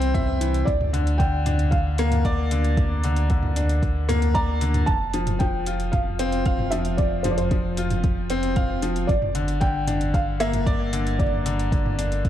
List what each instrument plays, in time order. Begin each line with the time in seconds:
Already playing: analog synth bass C2, upright piano E3 C4 E4 E5
0.02 closed hi-hat
0.14 upright piano E5, kick, closed hi-hat, mid tom
0.41 upright piano E3, closed hi-hat
0.54 closed hi-hat
0.65 analog synth bass D2, felt piano D5, kick, closed hi-hat
0.81 mid tom
0.93 upright piano D3, closed hi-hat
1.07 closed hi-hat
1.18 upright piano D3, felt piano G5, kick, closed hi-hat
1.46 upright piano D4, closed hi-hat, mid tom
1.59 closed hi-hat
1.71 felt piano F5, kick, closed hi-hat
1.98 upright piano A#3, closed hi-hat
2.12 closed hi-hat, mid tom
2.25 upright piano D5, kick, closed hi-hat
2.51 upright piano D3, closed hi-hat
2.64 closed hi-hat
2.77 kick, closed hi-hat, mid tom
3.04 upright piano D3, closed hi-hat
3.16 closed hi-hat
3.30 upright piano D3, kick, closed hi-hat
3.43 mid tom
3.56 upright piano D4, closed hi-hat
3.69 closed hi-hat
3.82 kick, closed hi-hat
4.09 upright piano A#3, closed hi-hat, mid tom
4.22 closed hi-hat
4.34 upright piano D5, felt piano A#5, kick, closed hi-hat
4.61 upright piano D3, closed hi-hat
4.74 closed hi-hat, mid tom
4.86 analog synth bass F1, felt piano A5, kick, closed hi-hat
5.14 upright piano F3, closed hi-hat
5.27 closed hi-hat, mid tom
5.39 upright piano F3, felt piano G5, kick, closed hi-hat
5.66 upright piano F4, closed hi-hat
5.80 closed hi-hat
5.92 felt piano F5, kick, closed hi-hat, mid tom
6.19 upright piano C4, closed hi-hat
6.32 closed hi-hat
6.46 upright piano F5, kick, closed hi-hat
6.59 mid tom
6.71 upright piano F3, felt piano E5, closed hi-hat
6.85 closed hi-hat
6.97 felt piano D5, kick, closed hi-hat
7.23 upright piano F3, felt piano C5, closed hi-hat, mid tom
7.30 felt piano D5
7.37 felt piano C5, closed hi-hat
7.51 upright piano F3, kick, closed hi-hat
7.77 upright piano F4, closed hi-hat
7.90 closed hi-hat, mid tom
8.04 kick, closed hi-hat
8.30 upright piano C4, closed hi-hat
8.43 closed hi-hat
8.56 upright piano F5, kick, closed hi-hat, mid tom
8.82 upright piano F3, closed hi-hat
8.96 closed hi-hat
9.07 analog synth bass G1, felt piano D5, kick, closed hi-hat
9.22 mid tom
9.35 upright piano D3, closed hi-hat
9.48 closed hi-hat
9.61 upright piano D3, felt piano G5, kick, closed hi-hat
9.88 upright piano D4, closed hi-hat, mid tom
10.01 closed hi-hat
10.14 felt piano F5, kick, closed hi-hat
10.40 upright piano A#3, felt piano E5, closed hi-hat
10.53 closed hi-hat, mid tom
10.66 upright piano D5, kick, closed hi-hat
10.93 upright piano D3, closed hi-hat
11.07 closed hi-hat
11.19 felt piano D5, kick, closed hi-hat, mid tom
11.46 upright piano D3, closed hi-hat
11.59 closed hi-hat
11.72 upright piano D3, kick, closed hi-hat
11.86 mid tom
11.99 upright piano D4, closed hi-hat
12.12 closed hi-hat
12.25 kick, closed hi-hat